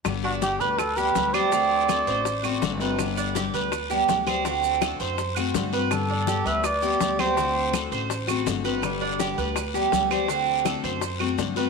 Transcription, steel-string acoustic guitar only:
X:1
M:4/4
L:1/8
Q:1/4=164
K:G
V:1 name="Steel-string acoustic guitar"
[D,G,B,G]2 [D,G,B,G]2 z [G,B,G] [D,G,B,G] [G,B,G] | [D,A,CF]2 [D,A,CF]2 z [A,CF] [D,A,CF] [A,CF] | [D,G,B,G]2 [D,G,B,G]2 z [G,B,G] [D,G,B,G] [G,B,G] | [D,A,CF]2 [D,A,CF]2 z [A,CF] [D,A,CF] [A,CF] |
[D,G,B,G]2 [D,G,B,G]2 z [G,B,G] [D,G,B,G] [G,B,G] | [D,A,CF]2 [D,A,CF]2 z [A,CF] [D,A,CF] [A,CF] | [D,G,B,G]2 [D,G,B,G]2 z [G,B,G] [D,G,B,G] [G,B,G] | [D,A,CF]2 [D,A,CF]2 z [A,CF] [D,A,CF] [A,CF] |]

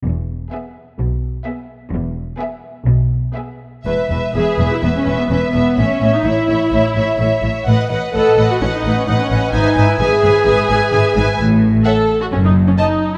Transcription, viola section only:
X:1
M:4/4
L:1/16
Q:1/4=128
K:E
V:1 name="Viola section"
z4 B,4 z4 B,4 | z4 B,4 z4 B,4 | z4 G3 E B, C2 B, C B,3 | C3 D E8- E2 z2 |
z4 A3 F C D2 C D C3 | D3 E G8- G2 z2 | z4 A3 F C D2 C D3 E |]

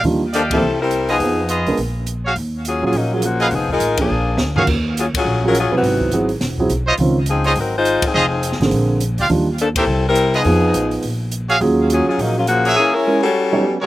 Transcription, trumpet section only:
X:1
M:4/4
L:1/8
Q:"Swing" 1/4=208
K:Ebm
V:1 name="Trumpet section"
z2 [=G=def]2 z3 [FAce] | z2 [FAce]2 z3 [GAdf] | z6 z [Acef] | z6 z [GAdf] |
z8 | z6 z [F=cde] | z3 [F=cde] z4 | [FA=ce] z6 [F=G=df] |
z3 [=GB=c_f] z3 [=FA_ce] | z6 z [GAdf] | z6 z [ABd_f]- | [ABd_f]2 z4 z [A,^FBd] |]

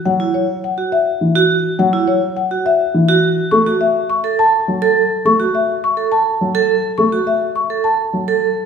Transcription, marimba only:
X:1
M:3/4
L:1/16
Q:1/4=104
K:F#phr
V:1 name="Marimba"
f z c z f z e z4 z | f z c z f z e z4 z | c' z e z c' z a z4 z | c' z e z c' z a z4 z |
c' z e z c' z a z4 z |]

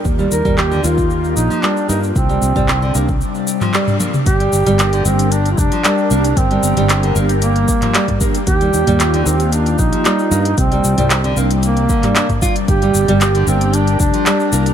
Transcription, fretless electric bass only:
X:1
M:4/4
L:1/16
Q:1/4=114
K:Gm
V:1 name="Fretless electric bass" clef=bass
E,,2 E,, E,,3 E,,4 B,,, z3 G,,2 | C,,2 C,, C,,3 C,,2 z8 | G,,,2 G,,, G,,,3 G,,,4 F,,, z3 C,,2 | G,,,2 G,,, G,,,3 G,,,4 z6 |
E,,2 E,, E,,3 E,,4 B,,, z3 G,,2 | C,,2 C,, C,,3 C,,4 z6 | G,,,2 G,,, G,,,3 G,,,4 F,,, z3 C,,2 |]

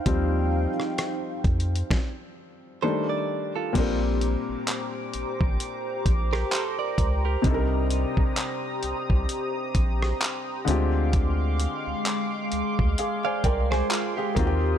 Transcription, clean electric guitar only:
X:1
M:4/4
L:1/16
Q:"Swing 16ths" 1/4=65
K:Bb
V:1 name="Clean electric guitar"
z12 [Ac] d2 [FA]- | [FA] z8 z2 [GB] [Ac] [Bd]2 [GB]- | [GB] z12 z3 | z8 z [df] [Bd] [_Ac] [FA] G2 z |]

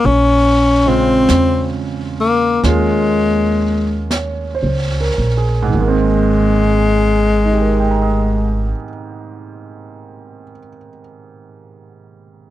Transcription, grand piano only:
X:1
M:4/4
L:1/16
Q:"Swing" 1/4=35
K:Ab
V:1 name="Grand piano"
z12 d c B A | z4 [EGBegbe']12 |]
V:2 name="Grand piano"
z2 [D,A,CF]6 [A,B,DF]8 | [A,,E,A,B,C]16 |]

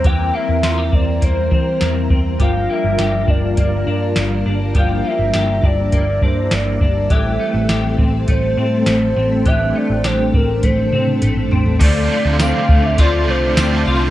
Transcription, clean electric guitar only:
X:1
M:4/4
L:1/16
Q:1/4=102
K:Dm
V:1 name="Clean electric guitar"
[E,B,CG]2 B,2 F G C2 B,2 C2 B,2 C2 | [F,G]2 B,2 G2 D2 B,2 D2 B,2 D2 | [F,G]2 B,2 G2 D2 B,2 D2 B,2 D2 | [E,G]2 A,2 G2 C2 A,2 C2 A,2 C2 |
[E,G]2 A,2 G2 C2 A,2 C2 A,2 C2 | A,2 A,2 C2 A,2 F2 A,2 C2 F2 |]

